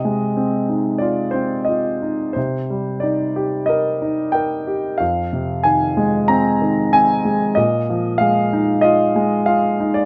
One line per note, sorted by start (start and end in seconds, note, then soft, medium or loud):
0.00 2.33 C3 soft
0.00 1.04 D#5 medium
0.05 1.31 G#3 soft
0.37 1.33 C4 soft
0.69 1.99 D#4 soft
0.98 1.67 F4 soft
0.98 1.34 D5 medium
1.31 2.33 C4 soft
1.31 1.68 C5 medium
1.65 2.34 F4 soft
1.65 2.14 D#5 soft
2.02 2.35 D#4 soft
2.33 4.97 C3 soft
2.33 3.03 C5 soft
2.70 3.98 G3 soft
3.00 4.00 D#4 soft
3.00 3.70 D5 soft
3.36 4.64 G4 soft
3.66 4.33 A#4 soft
3.66 4.29 D#5 soft
4.02 4.97 D#4 soft
4.32 4.98 A#4 soft
4.32 5.01 G5 medium
4.67 4.99 G4 soft
4.98 7.53 F2 soft
4.98 5.66 F5 medium
5.33 6.58 C3 soft
5.64 6.60 D#3 soft
5.64 6.31 G#5 medium
5.97 7.21 G#3 soft
6.28 6.92 C4 soft
6.28 6.95 A#5 medium
6.62 7.54 D#3 soft
6.93 7.55 C4 soft
6.93 7.38 G#5 medium
7.25 7.56 G#3 soft
7.55 10.05 A#2 soft
7.55 8.22 D#5 medium
7.90 9.12 F3 soft
8.18 9.14 G#3 soft
8.18 8.85 F5 medium
8.53 9.76 D#4 soft
8.81 9.46 F4 soft
8.81 9.48 D#5 medium
9.16 10.05 G#3 soft
9.46 10.05 F4 soft
9.46 9.96 F5 medium
9.80 10.05 D#4 soft
9.94 10.05 D5 medium